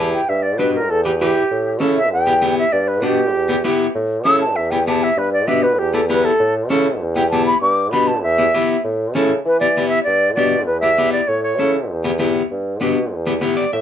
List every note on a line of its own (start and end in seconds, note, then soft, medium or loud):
0.00 0.16 E2 medium
0.00 0.20 E4 medium
0.00 0.21 G4 medium
0.00 0.21 B4 medium
0.00 0.13 A5 medium
0.13 0.31 G5 medium
0.29 0.60 G2 medium
0.29 0.44 E5 medium
0.43 0.59 D5 medium
0.58 0.90 B2 medium
0.58 0.75 D4 medium
0.58 0.76 G4 medium
0.58 0.74 B4 medium
0.58 0.76 B4 medium
0.75 0.92 A#4 medium
0.89 1.38 E2 loud
0.89 1.04 A4 loud
1.05 1.11 E4 medium
1.05 1.19 G4 medium
1.05 1.11 G4 medium
1.05 1.11 B4 medium
1.19 1.42 E4 medium
1.19 1.79 G4 loud
1.19 1.43 G4 medium
1.19 1.43 B4 medium
1.51 1.83 A2 medium
1.80 2.13 C#3 loud
1.80 1.97 C#4 medium
1.80 1.98 E4 medium
1.80 1.98 A4 medium
1.97 2.12 E5 loud
2.12 2.61 E2 loud
2.12 2.57 G5 loud
2.27 2.33 B3 medium
2.27 2.33 E4 medium
2.27 2.33 G4 medium
2.42 2.64 B3 medium
2.42 2.64 E4 medium
2.42 2.64 G4 medium
2.58 2.74 E5 medium
2.72 3.05 G2 loud
2.72 2.89 D5 medium
2.88 3.06 B4 medium
3.02 3.35 B2 loud
3.02 3.19 B3 medium
3.02 3.20 D4 medium
3.02 3.20 G4 medium
3.02 3.93 G4 loud
3.34 3.62 E2 medium
3.49 3.55 B3 medium
3.49 3.55 E4 medium
3.49 3.55 G4 medium
3.64 3.86 B3 medium
3.64 3.86 E4 medium
3.64 3.87 G4 medium
3.95 4.28 A2 loud
4.25 4.58 C#3 medium
4.25 4.42 C#4 medium
4.25 4.42 E4 medium
4.25 4.43 A4 medium
4.25 4.40 E6 loud
4.41 4.58 A5 loud
4.56 5.05 E2 medium
4.56 4.72 E5 medium
4.71 4.77 B3 medium
4.71 4.78 E4 medium
4.71 4.78 G4 medium
4.71 4.86 G5 medium
4.87 5.09 B3 medium
4.87 5.09 E4 medium
4.87 5.09 G4 medium
4.87 5.05 A5 medium
5.03 5.20 E5 loud
5.17 5.49 G2 loud
5.17 5.32 B4 medium
5.33 5.49 D5 medium
5.47 5.81 B2 medium
5.47 5.64 B3 medium
5.47 5.65 D4 medium
5.47 5.65 G4 medium
5.47 5.64 E5 loud
5.63 5.80 B4 medium
5.79 6.28 E2 medium
5.79 5.96 G4 loud
5.93 6.00 B3 medium
5.93 6.00 E4 medium
5.93 6.00 G4 medium
5.93 6.08 A4 medium
6.09 6.31 B3 medium
6.09 6.32 E4 medium
6.09 6.31 G4 medium
6.09 6.26 B4 medium
6.25 6.55 A4 loud
6.40 6.71 A2 loud
6.70 7.02 C#3 loud
6.70 6.87 C#4 medium
6.70 6.87 E4 medium
6.70 6.87 A4 loud
7.00 7.50 E2 medium
7.15 7.22 B3 medium
7.15 7.22 E4 medium
7.15 7.23 G4 medium
7.15 7.30 G5 medium
7.30 7.54 B3 medium
7.30 7.54 E4 medium
7.30 7.54 G4 medium
7.30 7.46 A5 medium
7.47 7.61 B5 loud
7.61 7.94 G2 loud
7.61 7.91 D6 medium
7.91 8.24 B2 loud
7.91 8.09 B3 medium
7.91 8.09 D4 medium
7.91 8.09 G4 medium
7.91 8.09 B5 loud
8.08 8.22 A5 loud
8.23 8.50 E2 loud
8.23 8.83 E5 loud
8.38 8.44 B3 medium
8.38 8.44 E4 medium
8.38 8.45 G4 medium
8.54 8.76 B3 medium
8.54 8.76 E4 medium
8.54 8.76 G4 medium
8.84 9.16 A2 medium
9.15 9.40 C#3 loud
9.15 9.31 C#4 medium
9.15 9.32 E4 medium
9.15 9.32 A4 medium
9.45 9.95 E3 loud
9.45 9.59 B4 medium
9.60 9.67 B3 medium
9.60 9.67 E4 medium
9.60 9.67 G4 medium
9.60 9.88 D5 loud
9.77 9.98 B3 medium
9.77 9.99 E4 medium
9.77 9.99 G4 medium
9.89 10.03 E5 loud
10.03 10.37 G2 medium
10.03 10.34 D5 loud
10.35 10.68 B2 medium
10.35 10.54 B3 medium
10.35 10.54 D4 medium
10.35 10.65 D5 medium
10.39 10.54 G4 medium
10.66 11.16 E2 medium
10.66 10.80 B4 medium
10.80 10.89 B3 medium
10.80 10.89 E4 medium
10.80 10.89 G4 medium
10.80 11.10 E5 loud
10.98 11.20 B3 medium
10.98 11.20 E4 medium
10.98 11.20 G4 medium
11.12 11.29 D5 medium
11.28 11.60 A2 medium
11.28 11.43 C#5 medium
11.43 11.73 C#5 medium
11.59 11.92 C#3 medium
11.59 11.76 C#4 medium
11.59 11.76 E4 soft
11.59 11.76 A4 medium
11.90 12.39 E2 medium
12.04 12.11 B3 medium
12.04 12.11 E4 medium
12.04 12.11 G4 medium
12.19 12.42 B3 medium
12.19 12.42 E4 medium
12.19 12.42 G4 medium
12.51 12.83 G2 medium
12.81 13.15 B2 medium
12.81 12.98 B3 medium
12.81 12.98 D4 medium
12.81 12.98 G4 medium
13.13 13.41 E2 medium
13.27 13.33 B3 medium
13.27 13.33 E4 medium
13.27 13.33 G4 medium
13.41 13.64 B3 medium
13.41 13.56 E4 medium
13.41 13.65 G4 medium
13.57 13.72 D5 medium
13.73 13.81 A2 medium
13.73 13.81 E5 medium